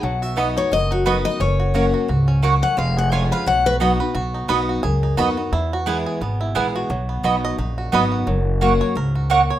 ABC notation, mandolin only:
X:1
M:4/4
L:1/16
Q:"Swing" 1/4=175
K:B
V:1 name="Mandolin"
z4 [B,Fdb] z6 z [B,Fdb] z3 | z4 [A,Fcf] z6 z [A,Fcf] z3 | z4 [C^Ecg] z6 z [B,Fdb] z3 | z4 [B,Fdb] z6 z [B,Fdb] z3 |
z4 [B,EBg] z6 z [B,EBg] z3 | z4 [B,Fdb] z6 z [B,Fdb] z3 | z4 [A,Fcf] z6 z [A,Fcf] z3 |]